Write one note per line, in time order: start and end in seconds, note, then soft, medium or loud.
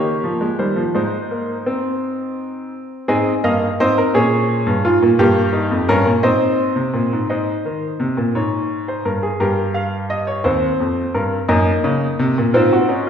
0.00 0.40 A#3 medium
0.00 0.91 G4 medium
0.00 0.57 C#5 medium
0.24 0.46 F3 medium
0.41 0.58 G#3 medium
0.59 0.81 D#3 medium
0.59 0.77 G3 medium
0.59 0.81 C5 medium
0.76 0.94 F3 medium
0.95 2.70 G#2 medium
0.95 1.17 G#3 medium
0.95 2.70 D#4 medium
0.95 2.70 C5 medium
1.31 1.53 A#3 medium
1.66 3.05 C4 medium
3.08 3.31 G#2 medium
3.08 3.31 C4 medium
3.08 3.30 G#4 medium
3.08 3.31 D#5 medium
3.44 3.66 G2 medium
3.44 3.66 A#3 medium
3.44 3.66 D#5 medium
3.44 3.66 F5 medium
3.80 4.02 G#2 medium
3.80 4.02 C4 medium
3.80 3.97 C5 medium
3.80 4.02 D#5 medium
3.98 4.15 A#4 medium
4.14 4.65 A#2 medium
4.14 5.16 C#4 medium
4.14 4.82 G#4 medium
4.14 6.19 C#5 medium
4.66 4.84 G2 medium
4.85 5.01 G#2 medium
4.85 5.06 F4 medium
5.03 5.19 A#2 medium
5.19 5.69 G2 medium
5.19 5.41 A#3 medium
5.19 5.86 G4 loud
5.53 5.74 D#4 medium
5.71 5.88 F2 medium
5.88 6.05 G2 medium
5.88 6.10 C#4 medium
5.88 6.10 A#4 loud
6.06 6.23 A#2 medium
6.23 6.75 G#2 medium
6.23 7.26 C4 medium
6.23 7.26 C5 medium
6.23 7.26 D#5 medium
6.76 6.93 C3 medium
6.94 7.11 A#2 medium
7.13 7.29 G#2 medium
7.29 7.52 G#2 medium
7.29 8.87 C5 medium
7.29 8.31 D#5 medium
7.65 7.87 D#3 medium
8.00 8.17 C3 medium
8.17 8.34 A#2 medium
8.35 9.02 G#2 medium
8.35 8.85 C#5 medium
8.88 9.04 C5 medium
9.05 9.27 G2 medium
9.05 9.22 A#4 medium
9.23 9.39 G#4 medium
9.40 10.41 G2 medium
9.40 10.41 G4 medium
9.40 9.61 A#4 medium
9.74 9.96 F5 medium
10.10 10.26 D#5 medium
10.27 10.43 C#5 medium
10.44 10.66 D#2 medium
10.44 11.45 C4 medium
10.44 11.11 C5 medium
10.80 11.01 F2 medium
11.14 11.35 G2 medium
11.14 11.35 A#4 medium
11.48 11.70 F#2 medium
11.48 12.50 A#3 medium
11.48 12.50 D#4 medium
11.48 12.50 D#5 medium
11.84 12.05 C#3 medium
12.19 12.35 C3 medium
12.38 12.54 A#2 medium
12.54 13.10 G#2 medium
12.54 12.76 C4 medium
12.54 12.70 F4 medium
12.54 13.10 C5 medium
12.73 12.89 F#4 medium
12.89 13.10 C#4 medium
12.89 13.06 D#4 medium